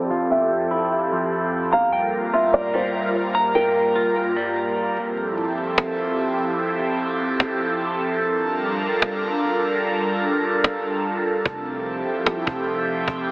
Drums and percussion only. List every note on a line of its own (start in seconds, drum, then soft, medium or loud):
4.97 cajon slap soft
5.17 cajon slap soft
5.38 cajon slap soft
5.58 cajon slap soft
5.78 cajon slap loud
5.99 cajon slap soft
6.19 cajon slap soft
6.39 cajon slap soft
6.59 cajon slap soft
6.79 cajon slap soft
7.00 cajon slap soft
7.20 cajon slap soft
7.40 cajon slap loud
7.61 cajon slap soft
7.81 cajon slap soft
8.01 cajon slap soft
8.21 cajon slap soft
8.41 cajon slap soft
8.62 cajon slap soft
8.82 cajon slap soft
9.02 cajon slap loud
9.23 cajon slap soft
9.43 cajon slap soft
9.63 cajon slap soft
10.64 cajon slap loud
11.46 cajon bass loud
11.66 cajon slap soft
11.86 cajon slap soft
12.06 cajon slap soft
12.26 cajon slap loud
12.47 cajon bass loud
12.67 cajon slap soft
12.87 cajon slap soft
13.08 cajon bass loud
13.28 cajon slap soft